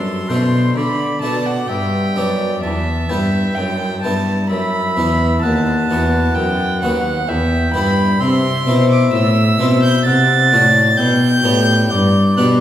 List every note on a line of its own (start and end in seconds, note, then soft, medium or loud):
0.00 0.26 F#2 soft
0.00 0.31 F#2 medium
0.00 0.30 A4 medium
0.00 0.74 C6 medium
0.29 0.72 B2 soft
0.29 0.76 B2 medium
0.29 0.97 A3 soft
0.29 0.97 D4 soft
0.29 0.79 C5 medium
0.76 1.19 D3 medium
0.76 1.22 D3 medium
0.76 1.68 D5 medium
0.76 1.21 B5 medium
1.22 1.65 B2 soft
1.22 1.69 B2 medium
1.22 1.56 A3 soft
1.22 1.57 D4 soft
1.22 1.48 A5 medium
1.46 1.70 F#5 medium
1.68 2.12 G2 soft
1.68 2.16 G2 medium
1.68 2.18 E5 medium
1.68 2.63 G5 medium
2.16 2.59 F#2 medium
2.16 2.62 F#2 medium
2.16 2.50 B3 soft
2.16 2.50 D4 soft
2.16 2.62 D5 medium
2.63 3.09 E2 medium
2.63 3.06 E2 soft
2.63 3.56 E5 medium
2.63 3.12 A5 medium
3.09 3.52 G2 medium
3.09 3.56 G2 medium
3.09 3.43 B3 soft
3.09 3.77 E4 soft
3.09 4.22 G5 medium
3.55 3.99 F#2 medium
3.55 4.03 F#2 medium
3.55 4.01 G5 medium
4.02 4.52 G2 medium
4.02 4.46 G2 soft
4.02 4.37 B3 soft
4.02 4.71 E4 soft
4.02 4.48 A5 medium
4.49 4.92 F#2 soft
4.49 4.99 F#2 medium
4.49 5.44 E5 medium
4.49 5.41 B5 medium
4.97 5.39 E2 medium
4.97 5.43 E2 medium
4.97 5.30 B3 soft
4.97 5.31 E4 soft
5.43 5.89 D#2 medium
5.43 5.86 D#2 soft
5.43 7.28 F#5 medium
5.43 6.36 A5 medium
5.90 6.32 E2 medium
5.90 6.35 E2 medium
5.90 6.57 B3 soft
5.90 6.57 F#4 soft
6.35 6.78 F#2 medium
6.35 6.83 F#2 medium
6.35 6.81 G5 medium
6.82 7.28 D#2 medium
6.82 7.24 D#2 medium
6.82 7.16 B3 soft
6.82 7.16 F#4 soft
6.82 7.30 F#5 medium
7.28 7.70 E2 medium
7.28 7.74 E2 medium
7.28 7.73 E5 medium
7.28 8.19 G5 medium
7.74 8.16 G2 medium
7.74 8.20 G2 medium
7.74 8.07 B3 soft
7.74 8.08 E4 medium
7.74 8.22 B5 medium
8.20 8.63 C3 medium
8.20 8.64 C3 medium
8.20 10.02 E5 medium
8.20 8.90 C6 medium
8.66 9.12 B2 medium
8.66 9.09 B2 medium
8.66 9.34 C4 soft
8.66 9.34 E4 medium
8.91 9.13 D6 medium
9.13 9.55 A2 medium
9.13 9.58 A2 medium
9.13 9.81 E6 loud
9.59 10.02 B2 medium
9.59 10.05 B2 medium
9.59 9.93 C4 soft
9.59 9.93 E4 medium
9.83 10.05 G6 medium
10.05 10.54 C3 medium
10.05 10.48 C3 medium
10.05 10.70 F#5 medium
10.05 10.99 A6 loud
10.53 10.95 A2 medium
10.53 10.98 A2 medium
10.53 10.86 A3 soft
10.53 10.86 D4 soft
10.53 10.86 F#4 medium
10.98 11.41 B2 medium
10.98 11.44 B2 medium
10.98 11.93 G5 medium
10.98 12.37 G6 loud
11.44 11.87 A2 medium
11.44 11.91 A2 medium
11.44 12.11 B3 soft
11.44 12.12 D4 soft
11.44 12.12 G4 medium
11.91 12.34 G2 medium
11.91 12.37 G2 medium
11.91 12.61 D5 medium
12.37 12.61 B2 medium
12.37 12.61 B3 soft
12.37 12.61 D4 soft
12.37 12.61 G4 soft
12.37 12.45 F#6 medium